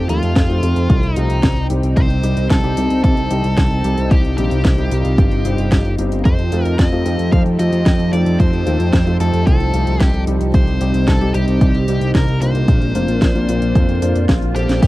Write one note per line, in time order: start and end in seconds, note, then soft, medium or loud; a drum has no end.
0.00 1.93 F3 medium
0.00 6.21 C4 medium
0.00 10.50 D#4 medium
0.00 4.07 G4 medium
0.00 1.93 A4 loud
0.09 0.21 D#2 medium
0.09 0.29 A3 medium
0.09 0.29 C4 medium
0.09 0.29 D#4 medium
0.09 0.29 F4 medium
0.09 1.13 F4 medium
0.09 closed hi-hat medium
0.23 0.35 F2 medium
0.23 closed hi-hat medium
0.36 0.48 F2 loud
0.36 kick loud
0.36 snare loud
0.36 closed hi-hat medium
0.50 0.62 F2 medium
0.50 0.60 A3 medium
0.50 0.60 C4 medium
0.50 0.60 D#4 medium
0.50 0.60 F4 medium
0.50 closed hi-hat soft
0.63 0.75 F2 loud
0.63 1.13 A3 medium
0.63 1.13 C4 medium
0.63 1.13 D#4 medium
0.63 1.13 F4 medium
0.63 closed hi-hat loud
0.76 0.88 F2 medium
0.76 closed hi-hat medium
0.90 1.02 C2 loud
0.90 kick loud
0.90 closed hi-hat medium
1.03 1.15 C2 medium
1.03 closed hi-hat soft
1.13 1.28 C2 medium
1.13 1.37 A3 medium
1.13 1.37 C4 medium
1.13 1.66 D#4 medium
1.13 1.37 D#4 medium
1.13 1.37 F4 medium
1.13 closed hi-hat medium
1.30 1.42 C2 medium
1.30 closed hi-hat medium
1.43 1.55 C2 loud
1.43 kick loud
1.43 snare loud
1.43 closed hi-hat medium
1.57 1.69 C2 medium
1.57 closed hi-hat soft
1.70 1.82 C2 medium
1.70 2.20 C3 medium
1.70 2.20 G3 medium
1.70 2.20 C4 medium
1.70 2.20 D#4 medium
1.70 2.20 G4 medium
1.70 closed hi-hat medium
1.83 1.95 C2 medium
1.83 closed hi-hat medium
1.97 2.09 C2 loud
1.97 2.47 C5 loud
1.97 kick loud
1.97 closed hi-hat medium
2.10 2.22 C2 medium
2.10 closed hi-hat soft
2.23 2.35 C2 medium
2.23 2.44 C3 medium
2.23 2.44 G3 medium
2.23 2.44 C4 medium
2.23 2.44 D#4 medium
2.23 2.44 G4 loud
2.23 closed hi-hat medium
2.37 2.49 C2 medium
2.37 closed hi-hat medium
2.50 2.62 C2 loud
2.50 3.00 A4 medium
2.50 kick loud
2.50 snare loud
2.50 closed hi-hat medium
2.64 2.76 C2 medium
2.64 2.74 C3 medium
2.64 2.74 G3 medium
2.64 2.74 C4 medium
2.64 2.74 D#4 medium
2.64 2.74 G4 medium
2.64 closed hi-hat soft
2.77 2.89 C2 loud
2.77 3.27 C3 medium
2.77 3.28 G3 medium
2.77 3.27 C4 medium
2.77 3.28 D#4 medium
2.77 3.28 G4 medium
2.77 closed hi-hat loud
2.90 3.03 C2 medium
2.90 closed hi-hat medium
3.04 3.16 C2 loud
3.04 4.14 A4 loud
3.04 kick loud
3.04 closed hi-hat medium
3.17 3.29 C2 medium
3.17 closed hi-hat soft
3.31 3.43 C2 medium
3.31 3.51 C3 medium
3.31 3.51 G3 medium
3.31 3.51 C4 medium
3.31 3.51 D#4 medium
3.31 3.51 G4 medium
3.31 closed hi-hat medium
3.44 3.56 C2 medium
3.44 closed hi-hat medium
3.57 3.69 C2 loud
3.57 kick loud
3.57 snare loud
3.57 closed hi-hat medium
3.71 3.83 C2 medium
3.71 closed hi-hat soft
3.84 3.96 C2 medium
3.84 4.35 C3 medium
3.84 4.35 G3 medium
3.84 4.35 C4 medium
3.84 4.35 D#4 medium
3.84 4.35 G4 medium
3.84 closed hi-hat medium
3.98 4.10 C2 medium
3.98 closed hi-hat medium
4.11 4.23 C2 loud
4.11 6.23 F4 medium
4.11 4.37 G4 medium
4.11 kick loud
4.11 closed hi-hat medium
4.24 4.36 C2 medium
4.24 closed hi-hat soft
4.38 4.50 A#1 medium
4.38 4.58 C3 medium
4.38 4.58 G3 medium
4.38 4.58 C4 medium
4.38 4.58 D#4 medium
4.38 4.58 G4 loud
4.38 5.95 G4 medium
4.38 closed hi-hat medium
4.51 4.63 C2 medium
4.51 closed hi-hat soft
4.65 4.77 C2 loud
4.65 kick loud
4.65 snare loud
4.65 closed hi-hat medium
4.78 4.90 C2 medium
4.78 4.88 C3 medium
4.78 4.88 G3 medium
4.78 4.88 C4 medium
4.78 4.88 D#4 medium
4.78 4.88 G4 medium
4.78 closed hi-hat soft
4.91 5.03 C2 loud
4.91 5.42 C3 medium
4.91 5.42 G3 medium
4.91 5.42 C4 medium
4.91 5.42 D#4 medium
4.91 5.42 G4 medium
4.91 closed hi-hat loud
5.05 5.17 C2 medium
5.05 closed hi-hat medium
5.18 5.30 G1 loud
5.18 kick loud
5.18 closed hi-hat medium
5.32 5.44 G1 medium
5.32 closed hi-hat soft
5.45 5.57 G1 loud
5.45 5.65 C3 medium
5.45 5.65 G3 medium
5.45 5.65 C4 medium
5.45 5.65 D#4 medium
5.45 5.65 G4 loud
5.45 closed hi-hat medium
5.58 5.70 G1 medium
5.58 closed hi-hat soft
5.72 5.84 G1 loud
5.72 kick loud
5.72 snare loud
5.72 closed hi-hat medium
5.85 5.97 G1 medium
5.85 closed hi-hat soft
5.98 6.11 G1 medium
5.98 6.19 G3 medium
5.98 6.19 C4 medium
5.98 6.19 D#4 medium
5.98 6.19 G4 medium
5.98 closed hi-hat medium
6.12 6.24 G1 medium
6.12 closed hi-hat soft
6.25 6.37 F2 loud
6.25 10.50 F3 medium
6.25 10.50 C4 medium
6.25 10.50 G4 medium
6.25 10.50 A4 loud
6.25 6.75 C5 loud
6.25 kick loud
6.25 closed hi-hat medium
6.39 6.51 F2 medium
6.39 closed hi-hat soft
6.52 6.64 F2 medium
6.52 6.72 A3 medium
6.52 6.72 C4 medium
6.52 6.72 D#4 medium
6.52 6.72 F4 loud
6.52 closed hi-hat medium
6.65 6.77 F2 medium
6.65 closed hi-hat soft
6.79 6.91 F2 loud
6.79 7.32 D#5 loud
6.79 kick loud
6.79 snare loud
6.79 closed hi-hat medium
6.92 7.04 F2 medium
6.92 7.03 A3 medium
6.92 7.03 C4 medium
6.92 7.03 D#4 medium
6.92 7.03 F4 medium
6.92 closed hi-hat soft
7.06 7.18 F2 medium
7.06 7.56 A3 medium
7.06 7.56 C4 medium
7.06 7.56 D#4 medium
7.06 7.56 F4 medium
7.06 closed hi-hat medium
7.19 7.31 F2 medium
7.19 closed hi-hat soft
7.32 7.44 F2 loud
7.32 7.40 F5 loud
7.32 kick loud
7.32 closed hi-hat soft
7.46 7.58 F2 medium
7.46 closed hi-hat soft
7.59 7.71 F2 medium
7.59 7.79 A3 medium
7.59 7.79 C4 medium
7.59 7.79 D#4 medium
7.59 7.79 F4 medium
7.59 8.12 D#5 loud
7.59 closed hi-hat medium
7.73 7.85 F2 medium
7.73 closed hi-hat medium
7.86 7.98 F2 loud
7.86 kick loud
7.86 snare loud
7.86 closed hi-hat medium
7.99 8.11 F2 medium
7.99 closed hi-hat soft
8.13 8.25 F2 medium
8.13 8.63 A3 medium
8.13 8.63 C4 medium
8.13 8.63 D#4 medium
8.13 8.63 F4 medium
8.13 8.38 D5 loud
8.13 closed hi-hat medium
8.26 8.38 F2 medium
8.26 closed hi-hat soft
8.40 8.52 F2 loud
8.40 9.16 C5 loud
8.40 kick loud
8.40 closed hi-hat medium
8.53 8.65 F2 medium
8.53 closed hi-hat soft
8.66 8.78 D#2 loud
8.66 8.87 A3 medium
8.66 8.87 C4 medium
8.66 8.87 D#4 medium
8.66 8.87 F4 loud
8.66 closed hi-hat medium
8.80 8.92 F2 medium
8.80 closed hi-hat soft
8.93 9.05 F2 loud
8.93 kick loud
8.93 snare loud
8.93 closed hi-hat medium
9.07 9.19 F2 medium
9.07 9.17 A3 medium
9.07 9.17 C4 medium
9.07 9.17 D#4 medium
9.07 9.17 F4 medium
9.07 closed hi-hat soft
9.20 9.32 F2 loud
9.20 9.70 A3 medium
9.20 9.70 C4 medium
9.20 9.71 D#4 medium
9.20 9.70 F4 medium
9.20 9.46 A4 medium
9.20 closed hi-hat medium
9.33 9.45 F2 medium
9.33 closed hi-hat medium
9.47 9.59 C2 loud
9.47 10.02 A4 medium
9.47 kick loud
9.47 closed hi-hat soft
9.60 9.72 C2 medium
9.60 closed hi-hat soft
9.74 9.85 C2 medium
9.74 9.94 A3 medium
9.74 9.94 C4 medium
9.74 9.94 D#4 medium
9.74 9.94 F4 medium
9.74 closed hi-hat medium
9.87 9.99 C2 medium
9.87 closed hi-hat soft
10.00 10.12 C2 loud
10.00 10.23 G4 medium
10.00 kick loud
10.00 snare loud
10.00 closed hi-hat medium
10.14 10.26 C2 medium
10.14 closed hi-hat soft
10.27 10.39 C2 medium
10.27 10.78 C3 medium
10.27 10.78 G3 medium
10.27 10.78 C4 medium
10.27 10.78 D#4 medium
10.27 10.78 G4 medium
10.27 closed hi-hat medium
10.41 10.52 C2 medium
10.41 closed hi-hat soft
10.54 10.66 C2 loud
10.54 12.66 G3 medium
10.54 12.66 C4 medium
10.54 12.66 D#4 medium
10.54 11.09 C5 loud
10.54 kick loud
10.54 closed hi-hat medium
10.67 10.79 C2 medium
10.67 closed hi-hat soft
10.81 10.93 C2 medium
10.81 11.01 C3 medium
10.81 11.01 G3 medium
10.81 11.01 C4 medium
10.81 11.01 D#4 medium
10.81 11.01 G4 loud
10.81 closed hi-hat medium
10.94 11.06 C2 medium
10.94 closed hi-hat soft
11.08 11.19 C2 loud
11.08 11.34 A4 loud
11.08 kick loud
11.08 snare loud
11.08 closed hi-hat medium
11.21 11.33 C2 medium
11.21 11.31 C3 medium
11.21 11.31 G3 medium
11.21 11.31 C4 medium
11.21 11.31 D#4 medium
11.21 11.31 G4 medium
11.21 closed hi-hat soft
11.34 11.46 C2 loud
11.34 11.85 C3 medium
11.34 11.85 G3 medium
11.34 11.85 C4 medium
11.34 11.85 D#4 medium
11.34 11.85 G4 medium
11.34 12.11 G4 loud
11.34 closed hi-hat medium
11.48 11.60 C2 medium
11.48 closed hi-hat medium
11.61 11.73 C2 loud
11.61 kick loud
11.61 closed hi-hat medium
11.75 11.86 C2 medium
11.75 closed hi-hat soft
11.88 12.00 C2 medium
11.88 12.08 C3 medium
11.88 12.08 G3 medium
11.88 12.08 C4 medium
11.88 12.08 D#4 medium
11.88 12.08 G4 medium
11.88 closed hi-hat medium
12.01 12.13 C2 medium
12.01 closed hi-hat soft
12.15 12.27 C2 loud
12.15 12.41 A#4 loud
12.15 kick loud
12.15 snare loud
12.15 closed hi-hat medium
12.28 12.40 C2 medium
12.28 closed hi-hat soft
12.41 12.53 C2 medium
12.41 12.92 A#2 medium
12.41 12.92 D4 medium
12.41 12.92 F4 medium
12.41 12.92 A#4 medium
12.41 12.92 C5 medium
12.41 14.25 C5 medium
12.41 closed hi-hat medium
12.55 12.67 C2 medium
12.55 closed hi-hat medium
12.68 12.80 A#1 loud
12.68 14.80 A#3 medium
12.68 14.80 C4 medium
12.68 14.80 D4 loud
12.68 kick loud
12.68 closed hi-hat medium
12.82 12.94 A#1 medium
12.82 closed hi-hat soft
12.95 13.07 F1 medium
12.95 13.15 A#2 medium
12.95 13.15 D4 medium
12.95 13.15 F4 medium
12.95 13.15 A#4 medium
12.95 13.15 C5 loud
12.95 closed hi-hat medium
13.08 13.20 A#1 medium
13.08 closed hi-hat medium
13.22 13.34 A#1 loud
13.22 kick loud
13.22 snare loud
13.22 closed hi-hat medium
13.35 13.47 A#1 medium
13.35 13.45 A#2 medium
13.35 13.45 D4 medium
13.35 13.45 F4 medium
13.35 13.45 A#4 medium
13.35 13.45 C5 medium
13.35 closed hi-hat soft
13.49 13.61 A#1 loud
13.49 13.99 A#2 medium
13.49 13.99 D4 medium
13.49 13.99 F4 medium
13.49 13.99 A#4 medium
13.49 13.99 C5 medium
13.49 closed hi-hat loud
13.62 13.74 A#1 medium
13.62 closed hi-hat medium
13.75 13.87 F2 loud
13.75 kick loud
13.75 closed hi-hat medium
13.75 swell medium
13.89 14.01 F2 medium
13.89 closed hi-hat soft
14.02 14.14 F2 medium
14.02 14.22 A#2 medium
14.02 14.22 D4 medium
14.02 14.22 F4 medium
14.02 14.22 A#4 medium
14.02 14.22 C5 medium
14.02 closed hi-hat loud
14.15 14.27 F2 medium
14.15 closed hi-hat medium
14.29 14.41 A#1 loud
14.29 kick loud
14.29 snare loud
14.29 closed hi-hat medium
14.42 14.54 A#1 medium
14.42 closed hi-hat soft
14.55 14.67 A#1 medium
14.55 14.87 F3 medium
14.55 14.87 C4 medium
14.55 14.87 F4 medium
14.55 14.82 G4 medium
14.55 14.87 A4 medium
14.55 14.87 C5 medium
14.55 closed hi-hat medium
14.69 14.81 A#1 medium
14.69 snare medium
14.69 closed hi-hat medium
14.82 14.87 F2 loud
14.82 14.87 A3 medium
14.82 14.87 C4 medium
14.82 14.87 F4 loud
14.82 14.87 A4 loud
14.82 kick loud
14.82 closed hi-hat medium
14.82 crash loud
14.82 cabasa soft